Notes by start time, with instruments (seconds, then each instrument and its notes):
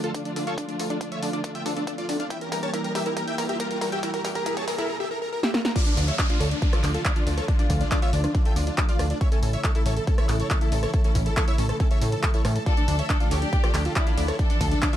Already playing: string section D3 F3 A3 F4, riser
0.04 supersaw synth F4 A4, synth pluck A4, closed hi-hat
0.14 supersaw synth D4, synth pluck A4, kick, closed hi-hat
0.25 supersaw synth D4, closed hi-hat
0.36 analog synth bass D2, supersaw synth D4, synth pluck A4, open hi-hat
0.47 supersaw synth A4 C#5, synth pluck F5, closed hi-hat
0.58 synth pluck D4, supersaw synth D4, kick, closed hi-hat
0.69 supersaw synth D4, closed hi-hat
0.79 analog synth bass D2, synth pluck A4, open hi-hat
0.90 supersaw synth D4, synth pluck A4, closed hi-hat
1.01 supersaw synth D4, synth pluck D4, kick, closed hi-hat
1.12 supersaw synth C#5 E5, closed hi-hat
1.22 analog synth bass D2, supersaw synth D4, synth pluck A4, open hi-hat
1.33 supersaw synth D4, synth pluck D4, closed hi-hat
1.44 supersaw synth D4, synth pluck A4, kick, closed hi-hat
1.55 supersaw synth E5 G5, closed hi-hat
1.66 analog synth bass D2, supersaw synth D4, synth pluck A4, open hi-hat
1.76 supersaw synth D4, synth pluck A4, closed hi-hat
1.87 supersaw synth D4, synth pluck A4, kick, closed hi-hat
1.98 supersaw synth F4 D5, closed hi-hat
2.09 analog synth bass D2, supersaw synth D4, synth pluck A4, open hi-hat
2.20 supersaw synth D4, synth pluck F5, closed hi-hat
2.30 string section E3 G3 A#3 G4, synth pluck E4, supersaw synth E5 G5, kick, closed hi-hat
2.41 supersaw synth A#4, closed hi-hat
2.52 analog synth bass E2, synth pluck A#4, supersaw synth A#4, kick, open hi-hat
2.63 synth pluck A#4, supersaw synth C#5 A5, closed hi-hat
2.73 synth pluck E4, supersaw synth A#4, kick, closed hi-hat
2.84 supersaw synth A#4, closed hi-hat
2.95 analog synth bass E2, supersaw synth G4 E5, synth pluck A#4, kick, open hi-hat
3.06 synth pluck E4, supersaw synth A#4, closed hi-hat
3.17 synth pluck A#4, supersaw synth A#4, kick, closed hi-hat
3.28 supersaw synth E5 G5, closed hi-hat
3.38 analog synth bass E2, synth pluck A#4, supersaw synth A#4, kick, open hi-hat
3.49 supersaw synth G4 E5, synth pluck A#4, closed hi-hat
3.60 synth pluck A#4, supersaw synth A#4, kick, closed hi-hat
3.71 supersaw synth A#4, closed hi-hat
3.81 analog synth bass E2, synth pluck A#4, supersaw synth A#4, kick, open hi-hat
3.92 supersaw synth G4 E5, synth pluck G5, closed hi-hat
4.03 synth pluck E4, supersaw synth A#4, kick, closed hi-hat
4.14 supersaw synth A#4, kick, closed hi-hat
4.25 analog synth bass E2, synth pluck A#4, kick, open hi-hat
4.35 synth pluck A#4, supersaw synth A#4, kick, closed hi-hat
4.46 synth pluck E4, supersaw synth A#4, kick, closed hi-hat
4.57 supersaw synth C#5 A5, kick, closed hi-hat
4.68 analog synth bass E2, synth pluck A#4, supersaw synth A#4, kick, open hi-hat
4.78 synth pluck E4, supersaw synth A#4, kick, closed hi-hat
4.89 supersaw synth A#4
5.00 supersaw synth G4 E5
5.11 supersaw synth A#4
5.22 supersaw synth A#4
5.33 supersaw synth A#4
5.43 supersaw synth G4 E5, snare
5.54 supersaw synth A#4, snare
5.65 supersaw synth A#4, snare
5.76 string section D3 F3 A3 F4, synth pluck D4, supersaw synth F4 D5, kick, closed hi-hat, crash, downlifter
5.86 supersaw synth D4, synth pluck D4, closed hi-hat
5.97 analog synth bass D2, synth pluck D4, supersaw synth D4, open hi-hat
6.08 supersaw synth C#5 E5, closed hi-hat
6.19 supersaw synth D4, synth pluck D6, kick, clap, closed hi-hat
6.30 supersaw synth D4, synth pluck F4, closed hi-hat
6.40 analog synth bass D2, synth pluck D4, supersaw synth A4 C#5, open hi-hat
6.51 supersaw synth D4, closed hi-hat
6.62 synth pluck D4, supersaw synth D4, kick, closed hi-hat
6.73 supersaw synth F4 D5, synth pluck A4, cross-stick, closed hi-hat
6.84 analog synth bass D2, synth pluck D4, supersaw synth D4, clap, open hi-hat
6.94 supersaw synth F4 A4, closed hi-hat
7.05 supersaw synth D4, synth pluck D6, kick, clap, closed hi-hat
7.16 supersaw synth D4, synth pluck F4, closed hi-hat
7.27 analog synth bass D2, synth pluck D4, supersaw synth D4, open hi-hat
7.38 supersaw synth A4 C#5, cross-stick, closed hi-hat
7.48 supersaw synth D4, synth pluck D4, kick, closed hi-hat
7.59 synth pluck D4, supersaw synth D4, closed hi-hat
7.70 analog synth bass D2, synth pluck D4, kick, open hi-hat
7.81 supersaw synth D4, closed hi-hat
7.91 supersaw synth D4, synth pluck D6, kick, clap, closed hi-hat
8.02 synth pluck F4, supersaw synth C#5 E5, closed hi-hat
8.13 analog synth bass D2, synth pluck D4, supersaw synth D4, open hi-hat
8.24 supersaw synth D4, cross-stick, closed hi-hat
8.35 synth pluck D4, supersaw synth D4, kick, closed hi-hat
8.45 synth pluck A4, supersaw synth E5 G5, closed hi-hat
8.56 analog synth bass D2, synth pluck D4, supersaw synth D4, open hi-hat
8.67 supersaw synth D4, closed hi-hat
8.78 supersaw synth D4, synth pluck D6, kick, clap, closed hi-hat
8.89 supersaw synth F4 D5, synth pluck F4, closed hi-hat
8.99 analog synth bass D2, synth pluck D4, supersaw synth D4, cross-stick, open hi-hat
9.10 supersaw synth D4, closed hi-hat
9.21 string section C#3 E3 E4, synth pluck C#4, supersaw synth C#5 E5, kick, closed hi-hat
9.32 synth pluck C#4, supersaw synth A4, closed hi-hat
9.43 analog synth bass A1, synth pluck C#4, supersaw synth A4, open hi-hat
9.53 supersaw synth C#5 E5, closed hi-hat
9.64 supersaw synth A4, synth pluck C#6, kick, clap, closed hi-hat
9.75 synth pluck E4, supersaw synth A4, closed hi-hat
9.86 analog synth bass A1, synth pluck C#4, supersaw synth A4 C#5, open hi-hat
9.97 supersaw synth A4, closed hi-hat
10.07 synth pluck C#4, supersaw synth A4, kick, closed hi-hat
10.18 synth pluck A4, supersaw synth C#5 E5, cross-stick, closed hi-hat
10.29 analog synth bass A1, synth pluck C#4, supersaw synth A4, clap, open hi-hat
10.40 supersaw synth A4 C#5, closed hi-hat
10.50 supersaw synth A4, synth pluck C#6, kick, clap, closed hi-hat
10.61 synth pluck E4, supersaw synth A4, closed hi-hat
10.72 analog synth bass A1, synth pluck C#4, supersaw synth A4, open hi-hat
10.83 supersaw synth A4 C#5, cross-stick, closed hi-hat
10.94 synth pluck C#4, supersaw synth A4, kick, closed hi-hat
11.04 synth pluck C#4, supersaw synth A4, closed hi-hat
11.15 analog synth bass A1, synth pluck C#4, kick, open hi-hat
11.26 supersaw synth A4, closed hi-hat
11.37 supersaw synth A4, synth pluck C#6, kick, clap, closed hi-hat
11.48 synth pluck E4, supersaw synth C#5 E5, closed hi-hat
11.58 analog synth bass A1, synth pluck C#4, supersaw synth A4, open hi-hat
11.69 supersaw synth A4, cross-stick, closed hi-hat
11.80 synth pluck C#4, supersaw synth A4, kick, closed hi-hat
11.91 synth pluck A4, supersaw synth C#5 E5, closed hi-hat
12.02 analog synth bass A2, synth pluck C#4, supersaw synth A4, open hi-hat
12.12 supersaw synth A4, closed hi-hat
12.23 synth pluck C#6, kick, clap, closed hi-hat
12.34 synth pluck E4, supersaw synth A4 C#5, closed hi-hat
12.45 analog synth bass A2, synth pluck C#4, supersaw synth A4, cross-stick, open hi-hat
12.56 supersaw synth A4, closed hi-hat
12.66 string section D3 F3 D4, synth pluck D4, supersaw synth F4 D5, violin section A4, kick, closed hi-hat
12.77 synth pluck D4, supersaw synth D4, closed hi-hat
12.88 analog synth bass D2, synth pluck D4, supersaw synth D4, open hi-hat, ride
12.99 supersaw synth C#5 E5, closed hi-hat
13.10 supersaw synth D4, synth pluck D6, kick, clap, closed hi-hat
13.20 supersaw synth D4, synth pluck F4, closed hi-hat
13.31 analog synth bass D2, synth pluck D4, violin section G4, supersaw synth A4 C#5, open hi-hat, ride
13.42 supersaw synth D4, closed hi-hat
13.53 synth pluck D4, supersaw synth D4, kick, closed hi-hat
13.64 supersaw synth F4 D5, synth pluck A4, cross-stick, closed hi-hat
13.74 analog synth bass D2, synth pluck D4, supersaw synth D4, clap, open hi-hat, ride
13.85 supersaw synth F4 A4, closed hi-hat
13.96 supersaw synth D4, violin section E4, synth pluck D6, kick, clap, closed hi-hat
14.07 supersaw synth D4, synth pluck F4, closed hi-hat
14.18 analog synth bass D2, synth pluck D4, supersaw synth D4, open hi-hat, ride
14.28 supersaw synth A4 C#5, cross-stick, closed hi-hat
14.39 supersaw synth D4, synth pluck D4, violin section A4, kick, closed hi-hat
14.50 synth pluck D4, supersaw synth D4, closed hi-hat
14.61 analog synth bass D2, synth pluck D4, kick, open hi-hat, ride
14.72 supersaw synth D4, closed hi-hat
14.82 supersaw synth D4, synth pluck D6, kick, clap, closed hi-hat
14.93 synth pluck F4, supersaw synth C#5 E5, closed hi-hat